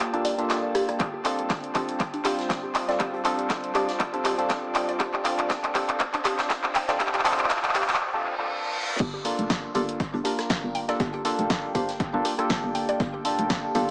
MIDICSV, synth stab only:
0, 0, Header, 1, 2, 480
1, 0, Start_track
1, 0, Key_signature, -2, "minor"
1, 0, Tempo, 500000
1, 959, Time_signature, 4, 2, 24, 8
1, 13351, End_track
2, 0, Start_track
2, 0, Title_t, "Synth stab"
2, 0, Program_c, 0, 62
2, 127, Note_on_c, 0, 58, 85
2, 130, Note_on_c, 0, 62, 79
2, 133, Note_on_c, 0, 65, 83
2, 136, Note_on_c, 0, 69, 96
2, 330, Note_off_c, 0, 58, 0
2, 331, Note_off_c, 0, 62, 0
2, 333, Note_off_c, 0, 65, 0
2, 334, Note_off_c, 0, 69, 0
2, 363, Note_on_c, 0, 58, 90
2, 369, Note_on_c, 0, 62, 80
2, 374, Note_on_c, 0, 65, 83
2, 380, Note_on_c, 0, 69, 102
2, 942, Note_off_c, 0, 58, 0
2, 945, Note_off_c, 0, 62, 0
2, 948, Note_off_c, 0, 65, 0
2, 951, Note_off_c, 0, 69, 0
2, 1194, Note_on_c, 0, 60, 79
2, 1198, Note_on_c, 0, 62, 71
2, 1200, Note_on_c, 0, 65, 69
2, 1203, Note_on_c, 0, 69, 89
2, 1651, Note_off_c, 0, 60, 0
2, 1653, Note_off_c, 0, 62, 0
2, 1654, Note_off_c, 0, 65, 0
2, 1656, Note_off_c, 0, 69, 0
2, 1674, Note_on_c, 0, 60, 96
2, 1677, Note_on_c, 0, 62, 86
2, 1680, Note_on_c, 0, 65, 84
2, 1683, Note_on_c, 0, 69, 109
2, 1911, Note_off_c, 0, 60, 0
2, 1912, Note_off_c, 0, 62, 0
2, 1914, Note_off_c, 0, 65, 0
2, 1915, Note_off_c, 0, 69, 0
2, 2150, Note_on_c, 0, 60, 74
2, 2156, Note_on_c, 0, 62, 65
2, 2162, Note_on_c, 0, 65, 67
2, 2168, Note_on_c, 0, 72, 77
2, 2736, Note_off_c, 0, 60, 0
2, 2739, Note_off_c, 0, 62, 0
2, 2741, Note_off_c, 0, 65, 0
2, 2744, Note_off_c, 0, 72, 0
2, 2767, Note_on_c, 0, 60, 78
2, 2770, Note_on_c, 0, 62, 71
2, 2773, Note_on_c, 0, 65, 73
2, 2776, Note_on_c, 0, 69, 89
2, 3091, Note_off_c, 0, 60, 0
2, 3093, Note_off_c, 0, 62, 0
2, 3094, Note_off_c, 0, 65, 0
2, 3096, Note_off_c, 0, 69, 0
2, 3114, Note_on_c, 0, 60, 101
2, 3117, Note_on_c, 0, 62, 92
2, 3120, Note_on_c, 0, 65, 91
2, 3123, Note_on_c, 0, 69, 110
2, 3571, Note_off_c, 0, 60, 0
2, 3572, Note_off_c, 0, 62, 0
2, 3574, Note_off_c, 0, 65, 0
2, 3575, Note_off_c, 0, 69, 0
2, 3594, Note_on_c, 0, 60, 84
2, 3597, Note_on_c, 0, 62, 78
2, 3600, Note_on_c, 0, 65, 79
2, 3603, Note_on_c, 0, 74, 94
2, 3753, Note_off_c, 0, 60, 0
2, 3754, Note_off_c, 0, 62, 0
2, 3756, Note_off_c, 0, 65, 0
2, 3757, Note_off_c, 0, 74, 0
2, 3967, Note_on_c, 0, 60, 90
2, 3970, Note_on_c, 0, 62, 79
2, 3973, Note_on_c, 0, 65, 81
2, 3976, Note_on_c, 0, 69, 96
2, 4170, Note_off_c, 0, 60, 0
2, 4171, Note_off_c, 0, 62, 0
2, 4173, Note_off_c, 0, 65, 0
2, 4174, Note_off_c, 0, 69, 0
2, 4203, Note_on_c, 0, 60, 92
2, 4209, Note_on_c, 0, 62, 86
2, 4215, Note_on_c, 0, 65, 82
2, 4220, Note_on_c, 0, 69, 102
2, 5009, Note_off_c, 0, 60, 0
2, 5012, Note_off_c, 0, 62, 0
2, 5015, Note_off_c, 0, 65, 0
2, 5018, Note_off_c, 0, 69, 0
2, 5035, Note_on_c, 0, 60, 78
2, 5037, Note_on_c, 0, 62, 75
2, 5041, Note_on_c, 0, 65, 74
2, 5043, Note_on_c, 0, 69, 85
2, 5491, Note_off_c, 0, 60, 0
2, 5493, Note_off_c, 0, 62, 0
2, 5494, Note_off_c, 0, 65, 0
2, 5496, Note_off_c, 0, 69, 0
2, 5515, Note_on_c, 0, 60, 99
2, 5518, Note_on_c, 0, 62, 85
2, 5520, Note_on_c, 0, 65, 90
2, 5523, Note_on_c, 0, 69, 109
2, 5751, Note_off_c, 0, 60, 0
2, 5752, Note_off_c, 0, 62, 0
2, 5754, Note_off_c, 0, 65, 0
2, 5755, Note_off_c, 0, 69, 0
2, 5990, Note_on_c, 0, 60, 72
2, 5996, Note_on_c, 0, 62, 66
2, 6002, Note_on_c, 0, 65, 66
2, 6008, Note_on_c, 0, 72, 76
2, 6576, Note_off_c, 0, 60, 0
2, 6579, Note_off_c, 0, 62, 0
2, 6582, Note_off_c, 0, 65, 0
2, 6584, Note_off_c, 0, 72, 0
2, 6607, Note_on_c, 0, 60, 82
2, 6610, Note_on_c, 0, 62, 73
2, 6613, Note_on_c, 0, 65, 72
2, 6616, Note_on_c, 0, 69, 87
2, 6931, Note_off_c, 0, 60, 0
2, 6933, Note_off_c, 0, 62, 0
2, 6934, Note_off_c, 0, 65, 0
2, 6935, Note_off_c, 0, 69, 0
2, 6955, Note_on_c, 0, 60, 100
2, 6957, Note_on_c, 0, 62, 94
2, 6960, Note_on_c, 0, 65, 95
2, 6963, Note_on_c, 0, 69, 114
2, 7411, Note_off_c, 0, 60, 0
2, 7413, Note_off_c, 0, 62, 0
2, 7414, Note_off_c, 0, 65, 0
2, 7416, Note_off_c, 0, 69, 0
2, 7434, Note_on_c, 0, 60, 84
2, 7437, Note_on_c, 0, 62, 80
2, 7440, Note_on_c, 0, 65, 80
2, 7443, Note_on_c, 0, 74, 94
2, 7593, Note_off_c, 0, 60, 0
2, 7594, Note_off_c, 0, 62, 0
2, 7596, Note_off_c, 0, 65, 0
2, 7597, Note_off_c, 0, 74, 0
2, 7807, Note_on_c, 0, 60, 89
2, 7810, Note_on_c, 0, 62, 84
2, 7813, Note_on_c, 0, 65, 83
2, 7816, Note_on_c, 0, 69, 93
2, 8010, Note_off_c, 0, 60, 0
2, 8011, Note_off_c, 0, 62, 0
2, 8013, Note_off_c, 0, 65, 0
2, 8014, Note_off_c, 0, 69, 0
2, 8043, Note_on_c, 0, 60, 91
2, 8049, Note_on_c, 0, 62, 85
2, 8055, Note_on_c, 0, 65, 82
2, 8061, Note_on_c, 0, 69, 103
2, 8622, Note_off_c, 0, 60, 0
2, 8625, Note_off_c, 0, 62, 0
2, 8628, Note_off_c, 0, 65, 0
2, 8631, Note_off_c, 0, 69, 0
2, 8875, Note_on_c, 0, 58, 81
2, 8878, Note_on_c, 0, 62, 72
2, 8881, Note_on_c, 0, 65, 77
2, 8884, Note_on_c, 0, 69, 91
2, 9331, Note_off_c, 0, 58, 0
2, 9333, Note_off_c, 0, 62, 0
2, 9334, Note_off_c, 0, 65, 0
2, 9336, Note_off_c, 0, 69, 0
2, 9355, Note_on_c, 0, 58, 95
2, 9358, Note_on_c, 0, 62, 91
2, 9361, Note_on_c, 0, 65, 91
2, 9364, Note_on_c, 0, 69, 108
2, 9591, Note_off_c, 0, 58, 0
2, 9593, Note_off_c, 0, 62, 0
2, 9594, Note_off_c, 0, 65, 0
2, 9596, Note_off_c, 0, 69, 0
2, 9831, Note_on_c, 0, 58, 72
2, 9837, Note_on_c, 0, 62, 66
2, 9842, Note_on_c, 0, 65, 68
2, 9848, Note_on_c, 0, 70, 78
2, 10416, Note_off_c, 0, 58, 0
2, 10419, Note_off_c, 0, 62, 0
2, 10422, Note_off_c, 0, 65, 0
2, 10425, Note_off_c, 0, 70, 0
2, 10448, Note_on_c, 0, 58, 83
2, 10451, Note_on_c, 0, 62, 73
2, 10454, Note_on_c, 0, 65, 71
2, 10457, Note_on_c, 0, 69, 89
2, 10772, Note_off_c, 0, 58, 0
2, 10773, Note_off_c, 0, 62, 0
2, 10774, Note_off_c, 0, 65, 0
2, 10776, Note_off_c, 0, 69, 0
2, 10795, Note_on_c, 0, 58, 100
2, 10798, Note_on_c, 0, 62, 89
2, 10802, Note_on_c, 0, 65, 93
2, 10804, Note_on_c, 0, 69, 110
2, 11252, Note_off_c, 0, 58, 0
2, 11253, Note_off_c, 0, 62, 0
2, 11255, Note_off_c, 0, 65, 0
2, 11256, Note_off_c, 0, 69, 0
2, 11275, Note_on_c, 0, 58, 89
2, 11278, Note_on_c, 0, 62, 80
2, 11281, Note_on_c, 0, 65, 83
2, 11284, Note_on_c, 0, 72, 96
2, 11433, Note_off_c, 0, 58, 0
2, 11434, Note_off_c, 0, 62, 0
2, 11436, Note_off_c, 0, 65, 0
2, 11437, Note_off_c, 0, 72, 0
2, 11648, Note_on_c, 0, 58, 86
2, 11651, Note_on_c, 0, 62, 81
2, 11654, Note_on_c, 0, 65, 83
2, 11657, Note_on_c, 0, 69, 96
2, 11850, Note_off_c, 0, 58, 0
2, 11852, Note_off_c, 0, 62, 0
2, 11854, Note_off_c, 0, 65, 0
2, 11855, Note_off_c, 0, 69, 0
2, 11884, Note_on_c, 0, 58, 90
2, 11889, Note_on_c, 0, 62, 81
2, 11895, Note_on_c, 0, 65, 86
2, 11901, Note_on_c, 0, 69, 105
2, 12689, Note_off_c, 0, 58, 0
2, 12692, Note_off_c, 0, 62, 0
2, 12695, Note_off_c, 0, 65, 0
2, 12698, Note_off_c, 0, 69, 0
2, 12715, Note_on_c, 0, 58, 81
2, 12719, Note_on_c, 0, 62, 75
2, 12721, Note_on_c, 0, 65, 74
2, 12724, Note_on_c, 0, 69, 90
2, 13172, Note_off_c, 0, 58, 0
2, 13173, Note_off_c, 0, 62, 0
2, 13175, Note_off_c, 0, 65, 0
2, 13176, Note_off_c, 0, 69, 0
2, 13196, Note_on_c, 0, 58, 100
2, 13198, Note_on_c, 0, 62, 92
2, 13201, Note_on_c, 0, 65, 90
2, 13204, Note_on_c, 0, 69, 112
2, 13351, Note_off_c, 0, 58, 0
2, 13351, Note_off_c, 0, 62, 0
2, 13351, Note_off_c, 0, 65, 0
2, 13351, Note_off_c, 0, 69, 0
2, 13351, End_track
0, 0, End_of_file